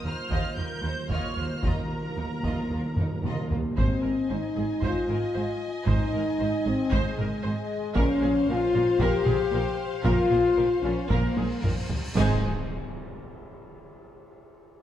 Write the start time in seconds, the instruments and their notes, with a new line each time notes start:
Already playing: french horn section A#3 F4
0.04 double bass section D#2, cello section D#2, timpani D#3, violin section D#4 A#4 F6, viola section C5
0.20 timpani D#3
0.28 cello section D#2, double bass section D#2, timpani D#3, violin section D#5, taiko
0.32 timpani D#3, violin section F4
0.43 timpani D#3
0.51 timpani D#3
0.57 cello section D#2, double bass section D#2, violin section A#3 F4 G6, viola section A#4
0.66 timpani D#3
0.74 timpani D#3
0.82 cello section D#2, double bass section D#2, timpani D#3, violin section D#4 A#4, viola section C5
0.89 timpani D#3
0.96 timpani D#3
1.03 timpani D#3
1.09 cello section D#2, double bass section D#2, timpani D#3, violin section F4 D#5 F6, viola section C#5, taiko
1.19 timpani D#3
1.26 timpani D#3
1.34 cello section D#2, double bass section D#2, timpani D#3, violin section A#3 F4, viola section C5
1.42 timpani D#3
1.49 timpani D#3
1.56 timpani D#3
1.63 double bass section D#2, cello section D#2, timpani D#3, violin section F4 D#5 A#5, viola section A#4, taiko
1.70 timpani D#3
1.78 timpani D#3
1.85 timpani D#3
1.92 timpani D#3
2.01 timpani D#3
2.09 timpani D#3
2.17 cello section D#2, double bass section D#2, timpani D#3, violin section D#4 A#4
2.25 timpani D#3
2.31 timpani D#3
2.40 cello section D#2, timpani D#3, violin section F4 D#5, taiko
2.44 double bass section D#2, timpani D#3
2.54 timpani D#3
2.62 timpani D#3
2.71 cello section D#2, double bass section D#2, timpani D#3, violin section A#3 F4
2.78 timpani D#3
2.86 timpani D#3
2.94 cello section D#2, double bass section D#2, timpani D#3, taiko low-mid
2.98 timpani D#3, violin section D#4 A#4
3.09 timpani D#3
3.16 timpani D#3
3.24 cello section D#2, double bass section D#2, timpani D#3, french horn section A#3, violin section F4 D#5, taiko mid
3.32 timpani D#3
3.41 timpani D#3
3.48 cello section D#2, double bass section D#2, timpani D#3, violin section A#3 F4, taiko low
3.55 timpani D#3
3.63 timpani D#3
3.71 timpani D#3
3.76 double bass section G#1, cello section G#2, french horn section C4, viola section C5, violin section D#5 G#5, taiko
4.02 double bass section G#1, cello section G#2, viola section A#4
4.29 double bass section G#1, cello section G#2, french horn section D#4, viola section C5
4.56 double bass section G#1, cello section G#2, viola section G#4
4.82 double bass section G#1, cello section G#2, french horn section F4, viola section C5, taiko
5.09 double bass section G#1, cello section G#2, viola section A#4
5.34 double bass section G#1, cello section G#2, viola section C5
5.86 double bass section G#1, cello section G#2, french horn section D#4, viola section C5, taiko
6.13 double bass section G#1, cello section G#2, viola section A#4
6.39 double bass section G#1, cello section G#2, viola section C5
6.66 double bass section G#1, cello section G#2, french horn section C4, viola section G#4
6.92 double bass section G#1, cello section G#2, french horn section G#3, viola section C5, taiko
7.18 double bass section G#1, cello section G#2, viola section A#4, taiko mid
7.43 double bass section G#1, cello section G#2, french horn section G#3, viola section C5
7.95 double bass section A#1, cello section A#2, french horn section C#4, viola section A#4, violin section C5 F5, taiko
8.22 double bass section A#1, cello section A#2, viola section G#4
8.47 double bass section A#1, cello section A#2, french horn section F4, viola section A#4
8.74 double bass section A#1, cello section A#2, viola section F4
8.99 double bass section A#1, cello section A#2, french horn section G4, viola section A#4, taiko
9.25 double bass section A#1, cello section A#2, viola section G#4, taiko mid
9.52 double bass section A#1, cello section A#2, viola section A#4
10.03 double bass section A#1, cello section A#2, french horn section F4, viola section A#4, taiko, cymbal swell
10.31 double bass section A#1, cello section A#2, viola section G#4
10.56 double bass section A#1, cello section A#2, viola section A#4
10.82 double bass section A#1, cello section A#2, french horn section C#4, viola section F4
11.08 double bass section A#1, cello section A#2, french horn section A#3, viola section A#4, taiko
11.37 double bass section A#1, cello section A#2, viola section G#4, taiko high
11.62 double bass section A#1, cello section A#2, viola section A#4, taiko low-mid
11.90 taiko low
12.16 double bass section G#1, timpani G#2, cello section G#2, french horn section G#3, viola section D#4, violin section C5 G#5, impact